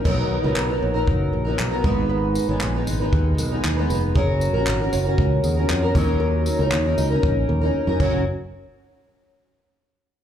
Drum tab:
CC |x-------|--------|--------|-------x|
TB |--------|-x-x-x-x|-x-x-x-x|-x-x----|
CP |--x---x-|--x---x-|--x---x-|--x-----|
BD |o---o--o|----o---|o---o--o|----o--o|

CC |--------|
TB |--------|
CP |--------|
BD |--------|